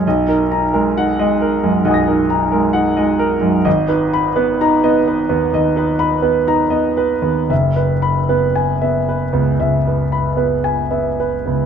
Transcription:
<<
  \new Staff \with { instrumentName = "Grand piano" } { \time 4/4 \key fis \mixolydian \tempo 4 = 64 << { r2 <fis'' gis'' dis''' ais'''>2 | r1 | r1 | } \\ { dis''16 ais'16 ais''16 ais'16 fis''16 dis''16 ais'16 fis,16 dis''16 ais'16 ais''16 ais'16 fis''16 dis''16 ais'16 fis,16 | dis''16 b'16 b''16 b'16 ais''16 dis''16 b'16 dis,16 dis''16 b'16 b''16 b'16 ais''16 dis''16 b'16 dis,16 | e''16 b'16 b''16 b'16 gis''16 e''16 b'16 cis,16 e''16 b'16 b''16 b'16 gis''16 e''16 b'16 cis,16 | } >> }
  \new Staff \with { instrumentName = "Grand piano" } { \time 4/4 \key fis \mixolydian b,,16 dis'8 gis16 dis'16 gis8 gis16 b,,16 dis'8 gis16 dis'16 gis8 gis16 | gis,,16 dis'8 b16 dis'16 b8 b16 dis,16 dis'8 b16 dis'16 b8 b16 | fis,,8. b8 b8 b16 cis,8 r16 b8 b8 b16 | }
>>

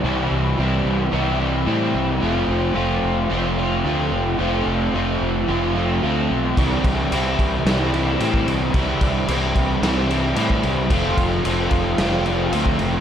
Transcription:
<<
  \new Staff \with { instrumentName = "Overdriven electric guitar" } { \time 4/4 \key c \lydian \tempo 4 = 110 <c e g c' e'>4 <e g c' e'>4 <c e g c' e'>8 <g c' e'>8 <e g c' e'>4 | <f a c' f'>4 <f a c' f'>4 <f a c' f'>8 <a c' f'>8 <f a c' f'>4 | <f a c' f'>4 <f a c' f'>4 <f a c' f'>8 <a c' f'>8 <f a c' f'>4 | <c e g c' e'>4 <e g c' e'>4 <c e g c' e'>8 <g c' e'>8 <e g c' e'>4 |
<c e g c' e'>4 <e g c' e'>4 <c e g c' e'>8 <g c' e'>8 <e g c' e'>4 | <f a c' f'>4 <f a c' f'>4 <f a c' f'>8 <a c' f'>8 <f a c' f'>4 | }
  \new Staff \with { instrumentName = "Fingered electric bass" } { \clef bass \time 4/4 \key c \lydian c,8 c,8 c,8 c,8 c,4 a,8 c,8 | f,,8 f,,8 f,,8 f,,8 f,,4 d,8 f,,8 | f,,8 f,,8 f,,8 f,,8 f,,4 d,8 b,,8 | c,8 c,8 c,8 c,8 c,4 a,8 c,8 |
c,8 c,8 c,8 c,8 c,4 a,8 c,8 | f,,8 f,,8 f,,8 f,,8 f,,4 d,8 f,,8 | }
  \new DrumStaff \with { instrumentName = "Drums" } \drummode { \time 4/4 r4 r4 r4 r4 | r4 r4 r4 r4 | r4 r4 r4 r4 | <cymc bd>8 <cymc bd>8 cymc8 <cymc bd>8 <cymc sn>8 cymc8 cymc16 bd16 cymc8 |
<cymc bd>8 <cymc bd>8 cymc8 <cymc bd>8 <cymc sn>8 cymc8 cymc16 bd16 cymc8 | <cymc bd>8 <cymc bd>8 cymc8 <cymc bd>8 <cymc sn>8 cymc8 cymc16 bd16 cymc8 | }
>>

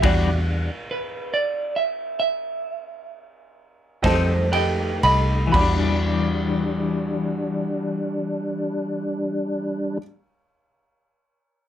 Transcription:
<<
  \new Staff \with { instrumentName = "Clean electric guitar" } { \time 12/8 \key e \minor \tempo 4. = 39 e''16 r8. b'8 d''8 e''8 e''2 <c'' a''>8 <b' g''>8 b''8 | b''1. | }
  \new Staff \with { instrumentName = "Upright piano" } { \time 12/8 \key e \minor <fis' g' d''>8 r1 <g' a' ees''>8 <g' a' ees''>8 <g' a' ees''>8 | <fis' g' d''>1. | }
  \new Staff \with { instrumentName = "Tonewheel organ" } { \time 12/8 \key e \minor <g d' fis''>4 r2. r8 <a ees' g'>4. | <g d'>1. | }
  \new Staff \with { instrumentName = "Clean electric guitar" } { \time 12/8 \key e \minor <e g d' fis'>8 r1 <c' ees' a'>8 r4 | <e g d'>1. | }
  \new Staff \with { instrumentName = "Fingered electric bass" } { \clef bass \time 12/8 \key e \minor e,4 r2. r8 f,4 c,8 | e,1. | }
  \new DrumStaff \with { instrumentName = "Drums" } \drummode { \time 12/8 <cymc bd cymr>4. r4. r4. <bd cymr sn>8 cymr8 cymr8 | <cymc bd>4. r4. r4. r4. | }
>>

